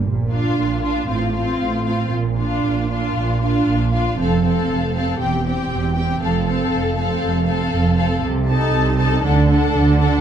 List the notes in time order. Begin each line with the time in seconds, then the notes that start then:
0.04 A#1 A#2
0.30 D4 F4 F5
0.56 A#1 A#2
0.82 D4 F4 F5
1.07 A1 A2 C4 F4 F5
1.34 C4 F4 F5
1.60 A1 A2
1.85 C4 F4 F5
2.12 A#1 A#2
2.38 D4 F4 F5
2.64 A#1 A#2
2.90 D4 F4 F5
3.15 A#1 A#2
3.41 D4 F4 F5
3.65 A#1 A#2
3.92 D4 F4 F5
4.17 F1 F2 C4 A4 F5
4.44 C4 A4 F5
4.68 F1 F2
4.94 C4 A4 F5
5.19 E1 E2 C4 G4 G5
5.44 C4 G4 G5
5.70 E1 E2
5.95 C4 G4 G5
6.21 F1 F2 C4 A4 F5
6.46 C4 A4 F5
6.71 F1 F2
6.95 C4 A4 F5
7.22 F1 F2
7.45 C4 A4 F5
7.72 F1 F2
7.96 C4 A4 F5
8.22 C2 C3
8.47 D#4 A4 A5
8.73 C2 C3
8.99 D#4 A4 A5
9.23 D2 D3 D4 A4 F#5
9.49 D4 A4 F#5
9.74 D2 D3
9.99 D4 A4 F#5